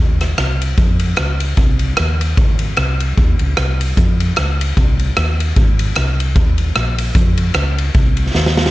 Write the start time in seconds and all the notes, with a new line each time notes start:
0.00 D#2
0.21 cross-stick, ride
0.38 C2, cross-stick, ride
0.62 ride
0.78 F2, kick, ride
1.00 ride
1.16 C#2, cross-stick, ride
1.40 ride
1.57 C2, kick, ride
1.79 ride
1.97 D#2, cross-stick, ride
2.21 ride
2.37 G#1, kick, ride
2.59 ride
2.76 C2, cross-stick, ride
3.00 ride
3.17 D#2, kick, ride
3.39 C#2, ride
3.57 C2, cross-stick, ride
3.81 open hi-hat, ride
3.97 F2, kick, hi-hat pedal, ride
4.20 ride
4.36 C#2, cross-stick, ride
4.61 ride
4.77 C2, kick, ride
4.99 ride
5.17 D#2, cross-stick, ride
5.40 ride
5.56 G#1, kick, ride
5.79 ride
5.95 C2, cross-stick, ride
6.20 ride
6.36 D#2, kick, ride
6.58 ride
6.75 A#1, cross-stick, ride
6.98 open hi-hat, ride
7.15 F2, kick, hi-hat pedal, ride
7.38 ride
7.54 C#2, cross-stick, ride
7.78 ride
7.94 C2, kick, ride
8.17 ride
8.35 D#2, snare
8.46 snare
8.57 snare
8.66 snare